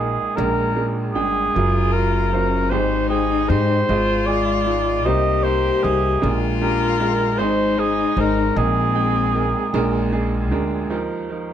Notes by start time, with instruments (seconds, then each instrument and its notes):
Already playing: upright bass A#1, upright piano A#1 A#2 G#4, cor anglais G#4
0.00 upright piano G#3 D#4 A#4
0.36 upright piano A#1 A#2 G#3 D4 A#4, upright bass A#1, cor anglais A#4
0.76 upright piano G#3 D4 A#4
1.13 upright bass G1, upright piano G#3 D4 G5, cor anglais G#4
1.55 upright piano F#1 F#2 F#3 F4 A#4, upright bass F#1, cello F4
1.92 upright piano F#3 F4 A#4, cor anglais A#4
2.32 upright piano F#3 F4 C5, cello C#4
2.70 upright piano G#1 G#2 G#3 G4 C5, upright bass G#1, cello D#4, cor anglais C5
3.09 upright piano G#3 C5 G5, cor anglais G#4
3.48 upright bass G#2, upright piano G#3 G4 C5, cor anglais C5
3.88 upright piano G#1 G#2 G#3 F4 D#5, upright bass G#1, cello F4
4.26 upright piano G#3 F4 G#4, cor anglais D5
4.67 upright piano G#3 D#4 F4
5.05 upright piano C2 C3 A#3 D#4 C5, upright bass C2, cello G4, cor anglais D#5
5.43 upright piano A#3 D#4 C5, cor anglais C5
5.83 upright bass C2, upright piano A#3 D#4 C5, cor anglais G#4
6.21 upright piano A#1 A#2 G#3 D4 A#4, upright bass A#1, cello F4
6.61 upright piano G#3 D4 G4, cor anglais A#4
7.00 upright piano G#3 D4 A#4
7.38 upright piano G#1 G#2 G#3 D#4 C5, upright bass G#1, cello D#4, cor anglais C5
7.77 upright piano G#3 D#4 C5, cor anglais G#4
8.17 upright bass G#1, upright piano G#3 D#4 C5, cor anglais A#4
8.56 upright piano A#1 A#2 G#3 D#4 A#4, upright bass A#1, cello C4, cor anglais G#4
8.95 upright piano G#3 D#4 G5
9.34 upright piano G#3 D#4 A#4
9.74 upright bass A#1, upright piano A#1 A#2 G#3 D4 A#4, cello A#3
10.12 upright piano G#3 D4 G#4
10.51 upright bass D2, upright piano G#3 D4 A#4
10.90 upright piano D#2 F3 D#4 A#4
11.30 upright piano F3 D#4 A#4